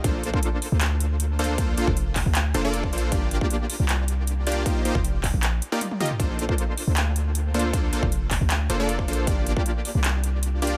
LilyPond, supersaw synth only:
\new Staff \with { instrumentName = "Supersaw synth" } { \time 4/4 \key bes \major \tempo 4 = 156 <bes d' f' a' c''>8 <bes d' f' a' c''>2. <bes d' f' a' c''>8 | <bes d' f' a' c''>8 <bes d' f' a' c''>16 r4. r16 <bes d' f' a' c''>16 <bes d' f' a' d''>8. <bes d' f' a' c''>8 | <bes d' f' g' d''>8 <bes d' f' g' d''>2. <bes d' f' g' d''>8 | <bes ees' f' g' c''>8 <bes ees' f' g' c''>16 r2 <bes ees' f' g' d''>16 r8 <bes ees' f' g' ees''>16 r16 |
<bes d' f' a' c''>8 <bes d' f' a' c''>2. <bes d' f' a' c''>8 | <bes d' f' a' c''>8 <bes d' f' a' c''>16 r4. r16 <bes d' f' a' c''>16 <bes d' f' a' d''>8. <bes d' f' a' c''>8 | <bes d' f' g' d''>8 <bes d' f' g' d''>2. <bes d' f' g' d''>8 | }